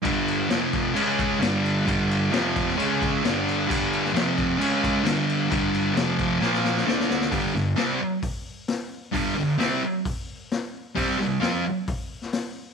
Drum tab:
CC |x-x-x-x-x-x-x-x-|x-x-x-x-x-x-x-x-|x-x-x-x-x-x-x-x-|x-x-x-x---------|
HH |----------------|----------------|----------------|----------------|
SD |----o-------o---|----o--o----o---|---oo-------o---|----o---oooooooo|
BD |o-----o---o-----|o-----o---o-----|o-----o---o-----|o-----o---------|

CC |----------------|----------------|----------------|
HH |o---o---o---o---|o---o---o---o---|o---o---o---o---|
SD |--o-o-------o---|----o-------o---|--o-o------oo---|
BD |o-------o-------|o-------o-------|o-------o-------|